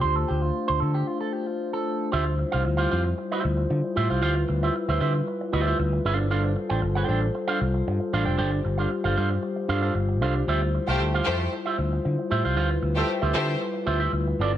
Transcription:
<<
  \new Staff \with { instrumentName = "Clean electric guitar" } { \time 4/4 \key d \dorian \tempo 4 = 115 c''16 a'16 g'16 f'8 c''16 a'16 g'16 f'16 a'16 g'16 f'8 a'8. | <f' g' c'' e''>8 r16 <f' g' c'' f''>16 r16 <f' g' c'' f''>16 <f' g' c'' f''>16 r8 <f' g' c'' e''>8 r8. <f' g' c'' e''>16 <f' g' c'' f''>16 | <f' g' c'' f''>8 r16 <f' g' c'' e''>16 r16 <f' g' c'' e''>16 <f' g' c'' e''>16 r8. <f' g' c'' e''>16 <f' g' c'' e''>16 r8 <d' a' c'' f''>8 | <d' a' c'' f''>8 r16 <d' a' c'' g''>16 r16 <d' a' c'' g''>16 <d' a' c'' g''>16 r8 <d' a' c'' f''>8 r8. <d' a' c'' f''>16 <d' a' c'' g''>16 |
<d' a' c'' g''>8 r16 <d' a' c'' f''>16 r16 <d' a' c'' f''>16 <d' a' c'' f''>16 r8. <d' a' c'' f''>16 <d' a' c'' f''>16 r8 <d' a' c'' f''>8 | <f' g' c'' e''>8 r16 <f' g' c'' f''>16 r16 <f' g' c'' f''>16 <f' g' c'' f''>16 r8 <f' g' c'' e''>8 r8. <f' g' c'' e''>16 <f' g' c'' f''>16 | <f' g' c'' f''>8 r16 <f' g' c'' e''>16 r16 <f' g' c'' e''>16 <f' g' c'' e''>16 r8. <f' g' c'' e''>16 <f' g' c'' e''>16 r8 <c' f' a' d''>8 | }
  \new Staff \with { instrumentName = "Violin section" } { \time 4/4 \key d \dorian r1 | r1 | r1 | r1 |
r1 | r8. <a g' c''>16 r8 <a g' c''>8 r2 | r8. <a g' c''>16 r8 <a g' c''>8 r2 | }
  \new Staff \with { instrumentName = "Glass harmonica" } { \time 4/4 \key d \dorian << { c''1 | c''1 | b'2.~ b'8 c''8~ | c''1~ |
c''1~ | c''1 | b'2.~ b'8 c''8 | } \\ { <d' f'>1 | <e' f'>1~ | <e' f'>2.~ <e' f'>8 a'8~ | a'2.~ a'8 g'8~ |
g'1 | <e' f'>1~ | <e' f'>2.~ <e' f'>8 <f' g'>8 | } >> }
  \new Staff \with { instrumentName = "Glass harmonica" } { \time 4/4 \key d \dorian a1 | g1~ | g1~ | g1~ |
g1~ | g1~ | g2.~ g8 a8 | }
  \new Staff \with { instrumentName = "Picked electric bass" } { \clef bass \time 4/4 \key d \dorian d,8 d,8 r16 d,16 d8 r2 | d,8. c,16 d,8 f,8 r8 d,8 d16 r16 a,16 c,16 | d,8 d,8 r16 d,16 d8 r8 d,8 d,8 g,,8~ | g,,8. a,,16 g,,8 a,,8 r8 c,8 g,16 r16 a,,16 f,,16 |
g,,8 g,,8 r16 g,,16 g,8 r8 g,8 g,,8 c,8 | d,8. c,16 d,8 f,8 r8 d,8 d16 r16 a,16 c,16 | d,8 d,8 r16 d,16 d8 r8 d,8 d,8 g,,8 | }
>>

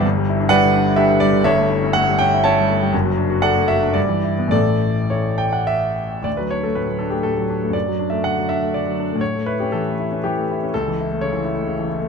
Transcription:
<<
  \new Staff \with { instrumentName = "Grand piano" } { \time 3/4 \key d \major \tempo 4 = 122 << { r4 fis''4 e''8 d''8 | e''4 fis''8 g''8 a''4 | r4 fis''8 e''8 d''4 | d''4 cis''8 g''16 fis''16 e''4 |
d''16 b'16 cis''16 a'16 b'8 a'16 g'16 a'4 | d''8. e''16 fis''8 e''8 d''4 | cis''8 b'16 g'16 a'4 g'4 | a'4 cis''8 r4. | } \\ { r4 <b' d''>4 <g' b'>8 r8 | <a' cis''>4 r4 <cis'' e''>4 | r4 <a' d''>8 r4. | a'4 <e' a'>4. r8 |
r2. | r2. | r2. | r2. | } >> }
  \new Staff \with { instrumentName = "Grand piano" } { \time 3/4 \key d \major <g,, g,>16 g16 e'16 d'16 g16 d16 d'16 e'16 d'16 d16 g16 d16 | <g,, g,>16 a16 e'16 cis'16 a16 g16 cis'16 e'16 cis'16 g16 a16 g16 | <fis,, fis,>16 fis16 d'16 fis'16 d'16 a16 fis'16 d'16 g,16 e16 e'16 b16 | <a,, a, e a e'>2. |
d,16 fis16 d'16 a16 a,16 fis16 d'16 a16 a,16 fis16 d'16 a16 | fis,16 fis16 d'16 a16 d16 fis16 d'16 a16 d16 fis16 d'16 a16 | a,16 a16 e'16 cis'16 e16 a16 e'16 cis'16 e16 a16 e'16 cis'16 | cis,16 e16 e'16 a16 cis16 e16 e'16 a16 cis16 e16 e'16 a16 | }
>>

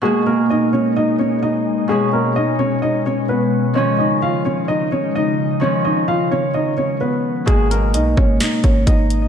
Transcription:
<<
  \new Staff \with { instrumentName = "Grand piano" } { \time 4/4 \key gis \dorian \tempo 4 = 129 <gis gis'>8 <ais ais'>8 <dis' dis''>8 <cis' cis''>8 <dis' dis''>8 <cis' cis''>8 <dis' dis''>4 | <gis gis'>8 <ais ais'>8 <dis' dis''>8 <cis' cis''>8 <dis' dis''>8 <cis' cis''>8 <b b'>4 | <cis' cis''>8 <dis' dis''>8 <eis' eis''>8 <cis' cis''>8 <dis' dis''>8 <cis' cis''>8 <dis' dis''>4 | <cis' cis''>8 <dis' dis''>8 <eis' eis''>8 <cis' cis''>8 <dis' dis''>8 <cis' cis''>8 <b b'>4 |
<gis gis'>8 <ais ais'>8 <dis' dis''>8 <cis' cis''>8 <dis' dis''>8 <cis' cis''>8 <dis' dis''>4 | }
  \new Staff \with { instrumentName = "Ambient pad" } { \time 4/4 \key gis \dorian << { dis'1 | cis'1 | dis'1 | cis'1 |
r1 | } \\ { <b, gis>1~ | <b, gis>1 | <cis eis>1~ | <cis eis>1 |
r1 | } >> }
  \new Staff \with { instrumentName = "Harp" } { \clef bass \time 4/4 \key gis \dorian <b, gis ais>1 | <b, gis cis'>1 | <dis eis cis'>1 | <dis eis cis'>1 |
<b, gis ais>1 | }
  \new Staff \with { instrumentName = "808-style bass" } { \clef bass \time 4/4 \key gis \dorian r1 | r1 | r1 | r1 |
gis,,4 b,,8 gis,,8 r8 gis,,8 gis,,4 | }
  \new DrumStaff \with { instrumentName = "Drums" } \drummode { \time 4/4 r4 r4 r4 r4 | r4 r4 r4 r4 | r4 r4 r4 r4 | r4 r4 r4 r4 |
<hh bd>8 hh8 hh8 bd8 <hh sn>8 <hh bd>8 <hh bd>8 hh8 | }
>>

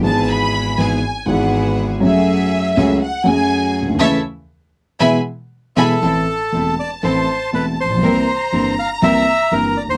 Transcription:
<<
  \new Staff \with { instrumentName = "Violin section" } { \time 4/4 \key e \mixolydian \tempo 4 = 120 a''8 b''4 gis''4 fis''4 r8 | e''2 fis''8 gis''4 r8 | <cis'' e'' a''>8 r4. <e'' gis'' b''>8 r4 <e'' gis'' b''>8 | \key a \minor a''1 |
bes''1 | }
  \new Staff \with { instrumentName = "Bandoneon" } { \time 4/4 \key e \mixolydian r1 | r1 | r2. r8 a'8~ | \key a \minor a'4. d''8 c''4 b'8 c''8~ |
c''4. f''8 e''4 bes'8 d''16 c''16 | }
  \new Staff \with { instrumentName = "String section" } { \time 4/4 \key e \mixolydian <gis, b e' gis'>4. <gis, b e' gis'>8 r8 <gis, b e' gis'>4. | <a fis' gis'>4. <a fis' gis'>8 r8 <a fis' gis'>4. | <cis' e' a'>8 r4. <b e' gis'>8 r4 <b e' gis'>8 | \key a \minor <c' e' a'>8 r8 <c' e' a'>8 r8 <c' e' a'>8 r8 <c' e' a'>8 r8 |
<c' e' bes'>8 r8 <c' e' bes'>8 r8 <c' e' bes'>8 r8 <c' e' bes'>8 r8 | }
  \new Staff \with { instrumentName = "Grand piano" } { \clef bass \time 4/4 \key e \mixolydian << { <gis,, gis, e gis b gis'>4. <gis,, gis, e gis b gis'>8 r8 <gis,, gis, e gis b gis'>4. | <fis, fis a cis' gis'>4. <cis, cis fis a cis' gis'>8 r8 <fis, fis a cis' gis'>4. | <cis e a>8 r4. <b, e gis>8 r4 <b, e gis>8 | \key a \minor <a,, a, e a c' a'>8 r8 <e,, e, e a c' a'>8 r8 <a,, a, e a c' a'>8 r8 <e,, e, e a c' a'>8 r8 |
<c, c e bes c' g'>8 r8 <g,, g, e bes c' g'>8 r8 <c, c e bes c' g'>8 r8 <g,, g, e bes c' g'>8 r8 | } \\ { r1 | r2. r8 r32 cis,32 d,32 dis,32 | r1 | r2. r8 r32 a,,32 bes,,32 b,,32 |
r2. r8 r32 d,32 dis,32 r32 | } >> }
>>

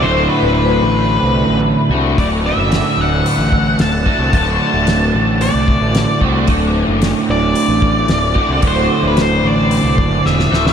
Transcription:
<<
  \new Staff \with { instrumentName = "Lead electric guitar" } { \time 4/4 \key d \mixolydian \tempo 4 = 112 c''8 b'8 b'2 r4 | d''8 e''4 fis''4. a''4 | a''2 d''4. r8 | r4. d''2~ d''8 |
c''8. b'16 c''8 d''4. e''8. fis''16 | }
  \new Staff \with { instrumentName = "Overdriven electric guitar" } { \clef bass \time 4/4 \key d \mixolydian <d, a, d a fis'>2.~ <d, a, d a fis'>8 <d, a, d a fis'>8 | <d, a, d a fis'>2.~ <d, a, d a fis'>8 <d, a, d a fis'>8 | <d, a, d a fis'>2.~ <d, a, d a fis'>8 <d, a, d a fis'>8 | <d, a, d a fis'>2.~ <d, a, d a fis'>8 <d, a, d a fis'>8 |
<d, a, d a fis'>2.~ <d, a, d a fis'>8 <d, a, d a fis'>8 | }
  \new Staff \with { instrumentName = "Fingered electric bass" } { \clef bass \time 4/4 \key d \mixolydian d,,8 r16 d,,8. a,,8. c,8 a,,8 r16 c,8 | d,,8. fis,,8 r16 d,,8 r16 a,,8. d,,8 r16 c,16 | d,,8 r16 d,,8. a,,8. c,8 a,,8 r16 c,8 | d,,8. fis,,8 r16 d,,8 r16 a,,8. d,,8 r16 c,16 |
d,,8 r16 d,,8. a,,8. c,16 fis,,8 e,,8 d,,8 | }
  \new DrumStaff \with { instrumentName = "Drums" } \drummode { \time 4/4 r4 r4 r4 r4 | <hho bd>4 <hho sn>4 hho8 bd8 <hho sn>8 bd8 | <hho bd>4 <hho sn>4 hho8 bd8 <hho sn>8 bd8 | <hho bd>4 <hho sn>4 hho8 bd8 <hho sn>8 bd8 |
<hho bd>4 <hho sn>4 hho8 bd8 sn16 sn16 sn16 sn16 | }
>>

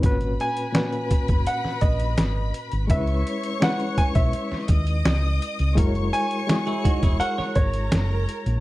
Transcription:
<<
  \new Staff \with { instrumentName = "String section" } { \time 4/4 \key gis \minor \tempo 4 = 84 <b' b''>1 | <cis'' cis'''>2~ <cis'' cis'''>8 <dis'' dis'''>4. | <cis'' cis'''>2~ <cis'' cis'''>8 <ais' ais''>4. | }
  \new Staff \with { instrumentName = "Grand piano" } { \time 4/4 \key gis \minor r8 gis''4. fis''8 dis''4 r8 | e''4 fis''8 gis''16 e''4 r4 r16 | r8 gis''4. fis''8 cis''4. | }
  \new Staff \with { instrumentName = "Clean electric guitar" } { \time 4/4 \key gis \minor r1 | r1 | r4 r16 <e' gis'>16 <dis' fis'>16 <e' gis'>16 <fis' ais'>16 <ais' cis''>4. r16 | }
  \new Staff \with { instrumentName = "Reed electric piano" } { \time 4/4 \key gis \minor <ais, cis' fis' b'>4 <ais, cis' fis' b'>4. r4. | <gis cis' dis' e' b'>4 <gis cis' e' b'>4. r4. | <gis e' fis' ais'>4 <gis e' fis' gis'>4. r4. | }
  \new Staff \with { instrumentName = "Fingered electric bass" } { \clef bass \time 4/4 \key gis \minor gis,,8 r4 r16 fis,,16 r8 ais,,8 gis,,8 r16 gis,,16 | cis,8 r4 r16 b,,16 r8 dis,8 cis,8 r16 cis,16 | fis,,8 r4 r16 e,,16 r8 gis,,8 fis,,8 r16 ais,,16 | }
  \new DrumStaff \with { instrumentName = "Drums" } \drummode { \time 4/4 <hh bd>16 hh16 hh16 hh16 <hh sn>16 hh16 <hh bd>16 <hh bd>16 hh16 sn16 <hh bd>16 hh16 <hh sn>8 hh16 hh16 | <hh bd>16 hh16 hh16 hh16 <hh sn>16 hh16 <hh bd>16 <hh bd>16 hh16 sn16 <hh bd>16 hh16 <hh sn>8 hh16 hh16 | <hh bd>16 hh16 hh16 hh16 <hh sn>16 hh16 <hh bd>16 <hh bd>16 hh16 sn16 <hh bd>16 hh16 <hh sn>8 hh16 hh16 | }
>>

